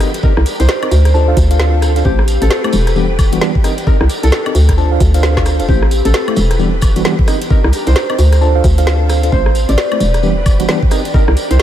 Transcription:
Already playing: G4 A4
0.00 C4 D4 D#4 G4 A#4 D#5, cross-stick, open hi-hat, tambourine
0.14 closed hi-hat, tambourine
0.23 C4 D#4 G4 A#4 D#5, kick, tambourine
0.37 C2, cross-stick
0.46 open hi-hat, tambourine
0.60 C2 C5, closed hi-hat, tambourine
0.69 snare, tambourine
0.83 C4 D#4 G4 A#4 D#5, closed hi-hat, high woodblock
0.91 D2 C4 F4 A4, open hi-hat, tambourine
1.05 cross-stick, closed hi-hat, tambourine
1.14 D4 F4 A4 C5 A5, tambourine
1.28 D4 F4 A4 C5 F5
1.37 D2, kick, open hi-hat, tambourine
1.51 D4 F4 A4 C5 F5, closed hi-hat, tambourine
1.59 snare, tambourine
1.82 cross-stick, open hi-hat, tambourine
1.96 D4 F4 A4 C5 F5, closed hi-hat, tambourine
2.05 A1 A3 C4 E4 G4 B4 C5, kick, tambourine
2.19 cross-stick
2.28 open hi-hat, tambourine
2.42 A1 A4, closed hi-hat, tambourine
2.50 snare, tambourine
2.64 A3 C4 E4 G4 C5, closed hi-hat, high woodblock
2.72 E1, open hi-hat, tambourine
2.87 cross-stick, closed hi-hat, tambourine
2.96 E3 G3 B3 D4 G4, tambourine
3.19 kick, open hi-hat, tambourine, high woodblock
3.32 E3 G3 B3 D4 F#4, closed hi-hat, tambourine
3.41 E3 G3 B3 D4 G4, snare, tambourine
3.55 kick
3.64 C4 D#4 G4 A#4 D#5, cross-stick, open hi-hat, tambourine
3.78 closed hi-hat, tambourine
3.87 C4 D#4 G4 A#4 D#5, kick, tambourine
4.01 C2, cross-stick
4.10 open hi-hat, tambourine
4.23 C2 A4, closed hi-hat, tambourine
4.32 snare, tambourine
4.46 C4 D#4 G4 A#4 D#5, closed hi-hat, high woodblock
4.55 D2 C4 F4 A4, open hi-hat, tambourine
4.69 kick, cross-stick, closed hi-hat, tambourine
4.78 D4 F4 A4 C5 A5, tambourine
4.92 D4 F4 A4 C5 F5
5.00 D2, kick, open hi-hat, tambourine
5.14 D4 F4 A4 C5 F5, closed hi-hat, tambourine
5.23 snare, tambourine
5.37 kick, snare, high woodblock
5.46 cross-stick, open hi-hat, tambourine
5.59 D1 D4 F4 A4 C5 F5, closed hi-hat, tambourine
5.68 A1 A3 E4 G4 B4, kick, tambourine
5.83 cross-stick
5.91 open hi-hat, tambourine
6.05 A1 A4, closed hi-hat, tambourine
6.14 snare, tambourine
6.28 A3 C4 E4 G4 C5, closed hi-hat, high woodblock
6.36 E1, open hi-hat, tambourine
6.51 cross-stick, closed hi-hat, tambourine
6.59 E3 G3 B3 D4 G4, tambourine
6.81 kick, open hi-hat, tambourine, high woodblock
6.96 E3 G3 B3 D4 F#4, closed hi-hat, tambourine
7.05 E3 G3 B3 D4 G4, snare, tambourine
7.19 kick
7.27 C4 D4 D#4 G4 A#4 D#5, cross-stick, open hi-hat, tambourine
7.41 closed hi-hat, tambourine
7.50 C4 D#4 G4 A#4 D#5, kick, tambourine
7.64 C2, cross-stick
7.73 open hi-hat, tambourine
7.87 C2 C5, closed hi-hat, tambourine
7.96 snare, tambourine
8.10 C4 D#4 G4 A#4 D#5, closed hi-hat, high woodblock
8.19 D2 C4 F4 A4, open hi-hat, tambourine
8.33 cross-stick, closed hi-hat, tambourine
8.41 D4 F4 A4 C5 A5, tambourine
8.55 D4 F4 A4 C5 F5
8.64 D2, kick, open hi-hat, tambourine
8.78 D4 F4 A4 C5 F5, closed hi-hat, tambourine
8.87 snare, tambourine
9.09 cross-stick, open hi-hat, tambourine
9.23 D4 F4 A4 C5 F5, closed hi-hat, tambourine
9.32 A1 A3 C4 E4 G4 B4 C5, kick, tambourine
9.46 cross-stick
9.55 open hi-hat, tambourine
9.69 A1 D5, closed hi-hat, tambourine
9.78 snare, tambourine
9.92 A3 C4 E4 G4 C5, closed hi-hat, high woodblock
10.00 E1, open hi-hat, tambourine
10.14 cross-stick, closed hi-hat, tambourine
10.23 E3 G3 B3 D4 G4, tambourine
10.46 kick, open hi-hat, tambourine, high woodblock
10.60 E3 G3 B3 D4 F#4, closed hi-hat, tambourine
10.69 E3 G3 B3 D4 G4, snare, tambourine
10.83 kick
10.91 C4 D#4 G4 A#4 D#5, cross-stick, open hi-hat, tambourine
11.05 closed hi-hat, tambourine
11.14 C4 D#4 G4 A#4 D#5, kick, tambourine
11.28 C2, cross-stick
11.37 open hi-hat, tambourine
11.50 C2 C5, closed hi-hat, tambourine
11.59 tambourine

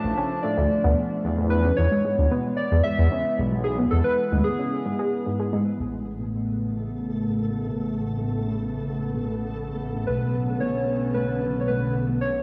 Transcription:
Already playing: F3 A3 D4 A5
0.04 A1
0.17 C#4
0.43 A3 D5
0.57 D2 A3
0.84 D2 B3
1.24 E2
1.38 A3
1.50 E3 G#3 B3 B4
1.65 C#4
1.76 E2 C#5
1.91 G#3
2.05 G#3
2.18 D2
2.31 B3
2.57 D5
2.72 E2
2.84 G#3 E5
2.98 E2
3.12 C#4
3.39 B1 G#3
3.52 G#3
3.64 G#4
3.79 B3
3.91 E2 A4
4.04 B4
4.32 D2 G#3
4.44 G#4
4.59 C#4
4.86 G#3
4.99 G#4
5.26 G#2
5.40 G#4
5.53 G#3
5.80 A1 C#3 A3 B3 A4
5.93 A3
6.20 B3
6.73 A3
7.00 C#4
7.67 B3
8.21 A3
8.48 C#4
8.74 A3
8.88 A3
9.14 B3
9.68 A3
9.95 C#4
10.07 B1 D3 C#4 B4
10.22 A3
10.35 A3
10.60 B3 C#5
11.14 A3 B4
11.42 C#4
11.60 C#5
11.67 A3 B4
11.82 A3
12.09 B3
12.21 D4 C#5

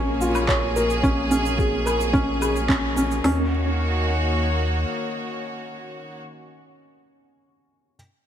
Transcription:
Already playing: A#1 A#2 A#3 C#4 G#4 A#4 C#5
0.21 F4, shaker
0.35 low woodblock, shaker
0.48 C#5, kick, clap, shaker
0.76 A#4, shaker
0.90 shaker
1.03 C#4, kick, shaker
1.31 C#4, shaker
1.46 shaker
1.59 G#4, kick, shaker
1.86 A#4, low woodblock, shaker
2.01 shaker
2.13 C#4, kick, shaker
2.41 G#4, low woodblock, shaker
2.56 shaker
2.69 C#4, kick, clap, shaker
2.97 C#4, shaker
3.11 shaker
3.24 D#2 D#3 C#4, snare, open hi-hat
3.33 A#3
3.41 F#4
3.50 C#5

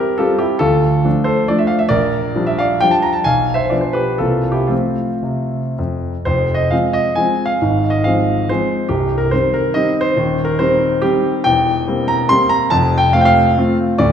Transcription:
Already playing: G3 C4 G4 A#4
0.18 G3 C4 F4 G4 A4
0.39 E4 G4
0.59 D2 F4 A4
1.05 F3 A3 D4
1.24 A4 C5
1.48 F3 A3 D4 D5
1.58 E5
1.67 F5
1.79 E5
1.89 A#1 A#4 D5
2.36 F3 G3 D4
2.47 E5
2.58 D5 F5
2.80 F3 G3 D4 G5
2.91 A5
3.02 A#5
3.13 A5
3.24 B1 F5 G#5
3.54 C5 E5
3.70 F3 B3 D4 D5
3.81 C5
3.93 G4 B4
4.18 C2 E3 A#3 C4 F4 A4
4.52 E4 G4
4.67 F3 A3 C4 F4
5.23 C3
5.79 F2
6.25 F1 F2 C5
6.54 D#5
6.71 F3 G#3 C4 F5
6.93 D#5
7.15 F3 G#3 C4 G#5
7.46 F5
7.62 G#1 G#2
7.90 D#5
8.04 F3 G#3 C4 F5
8.49 F3 G#3 C4 C5
8.89 C1 C2 G4
9.18 A#4
9.31 D#3 G3 C4 C5
9.54 A#4
9.74 D#3 G3 C4 D#5
10.01 C5
10.17 D#1 D#2
10.45 A#4
10.59 D#3 G3 C4 C5
11.02 D#3 G3 C4 G4
11.44 E1 E2 G5
11.88 G3 A#3 C4
12.08 A#5
12.29 G3 A#3 C4 C6
12.49 A#5
12.70 F1 F2 A5
12.98 G5
13.13 A3 C4 F4 F5
13.21 G5
13.25 F5
13.58 A3 C4 F4
13.98 D1 D2 D5

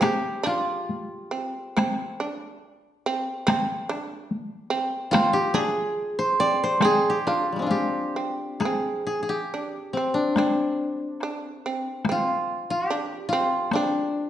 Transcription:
Already playing: C5
0.01 C4 G4, taiko rim, taiko high
0.43 D4 F4, taiko rim
0.89 taiko high
1.31 C4
1.77 C4, taiko rim, taiko high
2.20 D4
3.06 C4
3.47 C4, taiko rim, taiko high
3.89 D4, taiko rim
4.31 taiko high
4.70 C4
5.11 C4 F4, taiko rim, taiko high
5.33 G4
5.54 D4 G#4, taiko high
6.19 C5
6.40 C4 D5
6.64 C5
6.81 C4 G#4, taiko rim, taiko high
7.10 G4
7.27 D4 F4
7.52 G3 G#3
7.59 C4 D4
7.67 F4, taiko high
7.71 G4
8.16 C4
8.60 G#4, taiko rim, taiko high
8.65 C4
9.07 G#4
9.23 G#4
9.29 G4
9.54 D4
9.93 C4
10.14 D4
10.36 C4 D4, taiko rim, taiko high
11.21 D4, taiko rim
11.66 C4
12.05 taiko rim, taiko high
12.09 C4 F4
12.70 F4
12.87 D4 G4
13.29 F4
13.33 C4
13.72 C4 D4, taiko rim, taiko high

